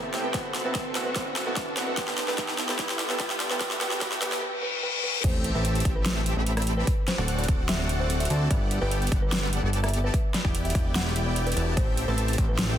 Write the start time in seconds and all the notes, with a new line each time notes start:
Already playing: A2 C4 G4 A4 E5 A5, riser
0.13 A2 B3 C4 E4 G4 A4 E5 G5, snare, closed hi-hat
0.24 B4
0.33 D1 B3 C4 E4 F#4 A4 C5 E5 F#5, kick, snare, closed hi-hat
0.54 snare, closed hi-hat
0.64 D1 B3 C4 E4 F#4 A4 B4 E5 A5
0.75 kick, snare, closed hi-hat
0.94 D1 B3 C4 E4 F#4 A4 E5 F#5, snare, closed hi-hat
1.06 B4
1.15 D1 B3 C4 E4 F#4 A4 C5 E5 F#5, kick, snare, closed hi-hat
1.36 snare, closed hi-hat
1.46 D1 B3 C4 E4 F#4 A4 B4 E5 A5
1.56 kick, snare, closed hi-hat
1.76 D1 B3 C4 E4 F#4 A4 E5 F#5, snare, closed hi-hat
1.87 B4
1.96 G1 B3 E4 G4 A4 B4 E5 G5, kick, snare, closed hi-hat
2.08 snare
2.18 snare, closed hi-hat
2.27 G1 B3 E4 G4 A4 B4 E5 A5, snare
2.37 G1 B3 E4 G4 A4 B4 E5 G5, kick, snare, closed hi-hat
2.48 snare
2.58 snare, closed hi-hat
2.68 G1 B3 E4 G4 A4 B4 E5 A5, snare
2.78 G1 B3 E4 G4 A4 B4 E5 G5, kick, snare, closed hi-hat
2.89 snare
2.99 snare, closed hi-hat
3.09 G1 B3 E4 G4 A4 B4 E5 A5, snare
3.19 G2 B3 E4 G4 A4 B4 E5 G5, kick, snare, closed hi-hat
3.30 snare
3.40 snare, closed hi-hat
3.49 G1 B3 E4 G4 A4 B4 E5 A5, snare
3.60 E1 B3 E4 G4 A4 B4 E5 G5, kick, snare, closed hi-hat
3.71 snare
3.80 E1 B3 E4 G4 A4 B4 E5 G5, snare, closed hi-hat
3.91 snare
4.00 B3 E4 G4 A4 B4 E5 G5, kick, snare, closed hi-hat
4.12 snare
4.21 E1 B3 E4 G4 A4 B4 E5 G5, snare, closed hi-hat
4.32 snare
4.42 B4, reverse cymbal
4.62 B4
4.83 B4
5.03 B4
5.24 A1 C4 G4 A4 C5 E5 G5, kick, closed hi-hat, crash, sub drop
5.44 closed hi-hat
5.55 A1 C4 G4 A4 B4 E5 A5
5.65 closed hi-hat
5.75 closed hi-hat
5.80 closed hi-hat
5.85 A1 C4 G4 A4 E5 G5, kick, closed hi-hat
5.96 B4
6.06 snare, closed hi-hat
6.26 closed hi-hat
6.36 A1 C4 G4 A4 E5 B5
6.46 closed hi-hat
6.57 D5, cross-stick, closed hi-hat
6.62 closed hi-hat
6.67 closed hi-hat
6.77 B4
6.87 kick, closed hi-hat
7.08 C5, snare, closed hi-hat
7.18 D1 C4 F#4 A4 D5 F#5
7.28 closed hi-hat
7.38 D5, closed hi-hat
7.44 closed hi-hat
7.48 D1 C4 F#4 A4 D5 F#5, kick, closed hi-hat
7.69 E5, snare, closed hi-hat
7.89 closed hi-hat
8.00 C5
8.10 closed hi-hat
8.20 E5, closed hi-hat
8.25 closed hi-hat
8.30 D2 C4 F#4 A4 D5 A5, closed hi-hat
8.51 G1 B3 G4 A4 D5 F#5, kick, closed hi-hat
8.71 closed hi-hat
8.81 G1 B3 G4 A4 B4 D5 G5
8.91 closed hi-hat
9.02 closed hi-hat
9.07 closed hi-hat
9.12 G1 B3 G4 A4 D5 F#5, kick, closed hi-hat
9.22 B4
9.32 snare, closed hi-hat
9.53 closed hi-hat
9.63 G1 B3 G4 A4 D5 A5
9.73 closed hi-hat
9.83 E5, cross-stick, closed hi-hat
9.88 closed hi-hat
9.94 closed hi-hat
10.04 B4
10.14 kick, closed hi-hat
10.34 D5, snare, closed hi-hat
10.45 E1 B3 E4 G4 D5 G5, kick
10.55 closed hi-hat
10.65 E5, closed hi-hat
10.70 closed hi-hat
10.75 E1 B3 E4 G4 D5 G5, kick, closed hi-hat
10.95 F#5, snare, closed hi-hat
11.16 closed hi-hat
11.26 D5
11.36 closed hi-hat
11.47 B4, closed hi-hat
11.52 closed hi-hat
11.56 E1 B3 E4 G4 D5 A5, closed hi-hat
11.77 A1 C4 G4 A4 C5 E5 G5, kick, closed hi-hat
11.97 closed hi-hat
12.08 A1 C4 G4 A4 B4 E5 A5
12.18 closed hi-hat
12.28 closed hi-hat
12.33 closed hi-hat
12.38 A1 C4 G4 A4 E5 G5, kick, closed hi-hat
12.49 B4
12.59 snare, closed hi-hat